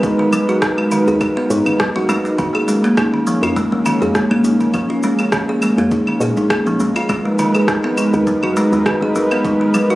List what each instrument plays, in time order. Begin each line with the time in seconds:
Already playing: analog synth pad G#3 D#4 A#4 B4, singing bowl D#4
0.03 fm bass G#1, kalimba D#4, kick, shaker
0.19 kalimba D#3
0.33 kalimba F#3, claves, shaker
0.49 kalimba F#4, shaker
0.62 kalimba G#3, kick, cross-stick, shaker
0.78 kalimba G#3, claves
0.91 kalimba D#3, shaker
1.07 fm bass D#2, kalimba G#4, shaker
1.21 kalimba G#3, kick, claves, shaker
1.37 kalimba B3
1.50 fm bass G#2, kalimba D#4, shaker
1.66 fm bass G#1, kalimba D#3, claves, shaker
1.80 kalimba F#3, kick, cross-stick, shaker
1.96 fm bass G#1, kalimba F#4
2.08 fm bass G#1, kalimba G#3, claves, shaker
2.25 kalimba G#3, shaker
2.38 fm bass A#1, kalimba D#3, analog synth pad G#3 A#3 C#4, kick, shaker
2.55 kalimba G#4, claves
2.68 kalimba G#3, shaker
2.84 kalimba A#3, shaker
2.97 kalimba D#4, kick, cross-stick, claves, shaker
3.14 kalimba D#3
3.27 kalimba F3, shaker
3.42 fm bass F2, kalimba F4, claves, shaker
3.56 kalimba G#3, kick, shaker
3.72 fm bass G#1, kalimba G#3
3.86 kalimba D#3, claves, shaker
4.01 fm bass F2, kalimba G#4, shaker
4.15 kalimba G#3, kick, cross-stick, shaker
4.31 fm bass A#1, kalimba A#3, claves
4.44 fm bass A#1, kalimba D#4, shaker
4.60 kalimba D#3, shaker
4.74 fm bass A#1, kalimba F3, kick, claves, shaker
4.90 kalimba F4
5.03 kalimba G#3, shaker
5.19 kalimba G#3, claves, shaker
5.32 kalimba D#3, kick, cross-stick, shaker
5.49 kalimba G#4
5.62 kalimba G#3, claves, shaker
5.78 fm bass F2, kalimba A#3, shaker
5.91 kalimba D#4, kick, shaker
6.07 kalimba D#3, claves
6.20 fm bass A#2, kalimba G#4, shaker
6.37 fm bass A#1, kalimba D#4, shaker
6.50 kalimba G#4, kick, cross-stick, claves, shaker
6.66 fm bass A#1, kalimba F3, shaker
6.79 fm bass A#1, kalimba G#3, shaker
6.96 kalimba F4, claves, shaker
7.08 fm bass G#1, kalimba G#3, analog synth pad D#4 A#4 B4, kick, claves, shaker
7.25 kalimba G#3
7.39 kalimba D#3, shaker
7.55 kalimba G#4, claves, shaker
7.68 kalimba G#3, kick, cross-stick, shaker
7.84 kalimba B3
7.97 kalimba D#4, claves, shaker
8.13 fm bass D#2, kalimba D#3, shaker
8.27 kalimba F#3, kick, shaker
8.43 fm bass F#1, kalimba F#4, claves
8.56 kalimba G#3, shaker
8.72 fm bass D#2, kalimba G#3, shaker
8.86 kalimba D#3, kick, cross-stick, claves, shaker
9.02 fm bass G#1, kalimba G#4
9.15 fm bass G#1, kalimba G#3, shaker
9.31 kalimba B3, claves, shaker
9.44 fm bass G#1, kalimba D#4, kick, shaker
9.61 kalimba D#3
9.74 kalimba F#3, claves, shaker
9.90 kalimba F#4, shaker